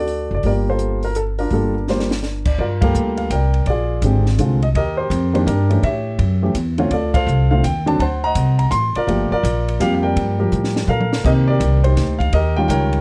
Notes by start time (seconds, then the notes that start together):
Already playing: D2 D5
0.00 F#4 A4
0.08 open hi-hat
0.31 F#1 D5
0.43 G1 G3 A#3 F4 G4 A#4 D5, kick, open hi-hat
0.69 F4 A4 C5
0.79 closed hi-hat
1.03 A#4, open hi-hat
1.15 A4, closed hi-hat
1.39 D4 F4 A#4, open hi-hat
1.50 G1 G3 A#3 F4 A4, kick, open hi-hat
1.88 G3 A#3 F4 C5, snare
2.00 snare
2.11 snare
2.23 snare
2.45 D5, kick, crash
2.58 G2 F4 A#4 D5, kick
2.81 G3 A#3 F4 G4 A4 A#4 F5, kick, ride
2.94 D2, hi-hat pedal
3.17 F5, ride
3.30 C2 A#4 D5 G5, kick, hi-hat pedal, ride
3.54 ride
3.66 A#1 D5, kick, ride
3.70 F4 G#4
4.02 G#1 D3 G#3 C4 G4, kick, hi-hat pedal, ride
4.26 snare
4.38 C2 D3 G#3 C4 F4, kick, hi-hat pedal, ride
4.62 D#5, ride
4.75 D#2 G4 A#4 D#5, kick, ride
4.97 G4 C5
5.10 F2, kick, hi-hat pedal, ride
5.33 D#3 A#3 D4 G4 C5, ride
5.47 G2 D4 G4 A#4, kick, hi-hat pedal, ride
5.69 E3 A3 C#4 G4, ride
5.83 A2 G4 C#5 E5, kick, ride
6.19 F#2, kick, ride
6.42 E3 A3 C#4 G4
6.55 E2, kick, hi-hat pedal, ride
6.78 D3 A3 C4 F4 C#5, ride
6.91 D2 F4 A4 D5, kick, ride
7.14 A4 C5 F5, kick, ride
7.26 C2, hi-hat pedal
7.51 D3 A3 C4 F4 F5
7.63 D#2 G5, kick, hi-hat pedal, ride
7.86 D3 F#3 C4 D4 A5, ride
7.99 D2 C5 F#5 A5, kick, ride
8.24 D#5 F#5 A#5
8.35 C2, kick, hi-hat pedal, ride
8.59 A#5, ride
8.71 A1 C6, kick, hi-hat pedal, ride
8.95 F4 A#4 D5, muted upright bass stroke, ride
9.07 G1 F3 A3 A#3 G4, kick, ride
9.31 F4 A#4 D5, muted upright bass stroke
9.43 A#1, kick, hi-hat pedal, ride
9.68 ride
9.80 F2 F3 G3 A#3 G4 F5, kick, hi-hat pedal, ride
9.94 F5
10.03 A#4 D5 G5
10.16 G2, kick, ride
10.39 F3 G3 G4 A#4
10.52 A2, hi-hat pedal
10.64 snare
10.76 snare
10.87 A#2 A4 A#4 F5, mid tom
11.01 mid tom
11.13 snare
11.24 C3 D#3 A#3 C4 G4 A#4 D#5, kick, crash
11.48 G4 A#4 D5
11.60 C2, kick, hi-hat pedal, ride
11.84 D#4 G4 C5, ride
11.97 D2, kick, snare, hi-hat pedal, ride
12.19 F5, kick, ride
12.33 D#2 G4 A#4 D#5, kick, ride
12.56 D#3 G3 C#4 F4 G5
12.68 C#2 A#4 C#5 G5, kick, hi-hat pedal, ride
12.93 ride